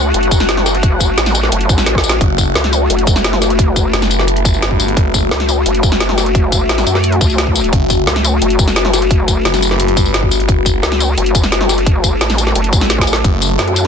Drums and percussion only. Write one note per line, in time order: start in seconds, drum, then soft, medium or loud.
0.14 closed hi-hat medium
0.23 closed hi-hat soft
0.31 kick loud
0.31 closed hi-hat medium
0.31 tambourine medium
0.40 snare medium
0.40 tambourine soft
0.49 snare loud
0.49 closed hi-hat loud
0.57 snare soft
0.66 snare soft
0.66 closed hi-hat medium
0.66 tambourine medium
0.75 closed hi-hat soft
0.83 kick loud
0.83 closed hi-hat loud
1.00 kick medium
1.00 closed hi-hat medium
1.00 tambourine medium
1.18 snare loud
1.18 closed hi-hat loud
1.26 snare medium
1.26 closed hi-hat soft
1.26 tambourine soft
1.35 closed hi-hat medium
1.35 tambourine medium
1.43 snare soft
1.52 closed hi-hat loud
1.61 closed hi-hat soft
1.69 kick loud
1.69 closed hi-hat medium
1.69 tambourine medium
1.78 snare medium
1.78 tambourine soft
1.86 snare medium
1.86 closed hi-hat loud
1.95 kick medium
1.95 snare medium
2.04 closed hi-hat medium
2.04 tambourine medium
2.09 snare medium
2.09 closed hi-hat soft
2.21 kick loud
2.21 closed hi-hat loud
2.38 kick medium
2.38 closed hi-hat medium
2.38 tambourine medium
2.55 snare loud
2.55 closed hi-hat loud
2.64 snare medium
2.64 closed hi-hat soft
2.73 closed hi-hat medium
2.73 tambourine medium
2.90 closed hi-hat loud
2.99 closed hi-hat soft
3.07 kick loud
3.07 closed hi-hat medium
3.07 tambourine medium
3.16 snare medium
3.16 tambourine soft
3.24 snare loud
3.24 closed hi-hat loud
3.33 snare medium
3.42 snare soft
3.42 closed hi-hat medium
3.42 tambourine medium
3.50 closed hi-hat soft
3.59 kick loud
3.59 closed hi-hat loud
3.76 kick medium
3.76 closed hi-hat medium
3.76 tambourine medium
3.93 snare loud
3.93 closed hi-hat loud
4.02 snare medium
4.02 closed hi-hat soft
4.02 tambourine soft
4.11 closed hi-hat medium
4.11 tambourine medium
4.19 snare soft
4.28 closed hi-hat medium
4.37 closed hi-hat soft
4.45 kick loud
4.45 closed hi-hat medium
4.45 tambourine medium
4.54 tambourine soft
4.62 snare loud
4.62 closed hi-hat medium
4.71 kick medium
4.80 closed hi-hat medium
4.80 tambourine medium
4.88 closed hi-hat soft
4.97 kick loud
4.97 closed hi-hat medium
5.14 kick medium
5.14 closed hi-hat medium
5.14 tambourine medium
5.31 snare loud
5.31 closed hi-hat medium
5.40 snare medium
5.40 closed hi-hat soft
5.49 closed hi-hat medium
5.49 tambourine medium
5.66 closed hi-hat medium
5.75 closed hi-hat soft
5.83 kick loud
5.83 closed hi-hat medium
5.83 tambourine medium
5.92 snare medium
6.00 snare loud
6.00 closed hi-hat medium
6.09 snare medium
6.18 snare soft
6.18 closed hi-hat medium
6.18 tambourine medium
6.26 closed hi-hat soft
6.35 kick loud
6.35 closed hi-hat medium
6.52 kick medium
6.52 closed hi-hat medium
6.52 tambourine medium
6.69 snare loud
6.69 closed hi-hat medium
6.78 snare medium
6.78 closed hi-hat soft
6.78 tambourine soft
6.87 closed hi-hat medium
6.87 tambourine medium
6.95 snare soft
7.04 closed hi-hat medium
7.12 closed hi-hat soft
7.21 kick loud
7.21 closed hi-hat medium
7.21 tambourine medium
7.30 tambourine soft
7.38 snare loud
7.38 closed hi-hat medium
7.47 kick medium
7.56 closed hi-hat medium
7.56 tambourine medium
7.64 closed hi-hat soft
7.73 kick loud
7.73 closed hi-hat medium
7.90 kick medium
7.90 closed hi-hat medium
7.90 tambourine medium
8.07 snare loud
8.07 closed hi-hat medium
8.16 snare medium
8.16 closed hi-hat soft
8.25 closed hi-hat medium
8.25 tambourine medium
8.42 closed hi-hat medium
8.50 closed hi-hat soft
8.59 kick loud
8.59 closed hi-hat medium
8.59 tambourine medium
8.68 snare medium
8.68 tambourine soft
8.76 snare loud
8.76 closed hi-hat medium
8.85 snare soft
8.94 snare soft
8.94 closed hi-hat medium
8.94 tambourine medium
9.02 closed hi-hat soft
9.11 kick loud
9.11 closed hi-hat medium
9.28 kick medium
9.28 closed hi-hat medium
9.28 tambourine medium
9.45 snare loud
9.45 closed hi-hat medium
9.54 snare medium
9.54 closed hi-hat soft
9.54 tambourine soft
9.62 closed hi-hat medium
9.62 tambourine medium
9.71 snare soft
9.80 closed hi-hat medium
9.88 closed hi-hat soft
9.97 kick loud
9.97 closed hi-hat medium
9.97 tambourine medium
10.06 tambourine soft
10.14 snare loud
10.14 closed hi-hat medium
10.23 kick medium
10.31 closed hi-hat medium
10.31 tambourine medium
10.40 closed hi-hat soft
10.49 kick loud
10.49 closed hi-hat loud
10.66 kick medium
10.66 closed hi-hat medium
10.66 tambourine medium
10.83 snare loud
10.83 closed hi-hat loud
10.92 snare medium
10.92 closed hi-hat soft
11.00 closed hi-hat medium
11.00 tambourine medium
11.18 closed hi-hat loud
11.26 closed hi-hat soft
11.35 kick loud
11.35 closed hi-hat medium
11.35 tambourine medium
11.44 snare medium
11.44 tambourine soft
11.52 snare loud
11.52 closed hi-hat loud
11.61 snare soft
11.69 snare soft
11.69 closed hi-hat medium
11.69 tambourine medium
11.78 closed hi-hat soft
11.86 kick loud
11.86 closed hi-hat loud
12.04 kick medium
12.04 closed hi-hat medium
12.04 tambourine medium
12.21 snare loud
12.21 closed hi-hat loud
12.30 snare medium
12.30 closed hi-hat soft
12.30 tambourine soft
12.38 closed hi-hat medium
12.38 tambourine medium
12.47 snare soft
12.55 closed hi-hat loud
12.64 closed hi-hat soft
12.73 kick loud
12.73 closed hi-hat medium
12.73 tambourine medium
12.81 snare medium
12.81 tambourine soft
12.90 snare medium
12.90 closed hi-hat loud
12.98 kick medium
12.98 snare medium
13.07 closed hi-hat medium
13.07 tambourine medium
13.13 snare loud
13.13 closed hi-hat soft
13.24 kick loud
13.24 closed hi-hat loud
13.42 closed hi-hat medium
13.42 tambourine medium
13.59 snare loud
13.59 closed hi-hat loud
13.68 closed hi-hat soft
13.76 closed hi-hat medium
13.76 tambourine medium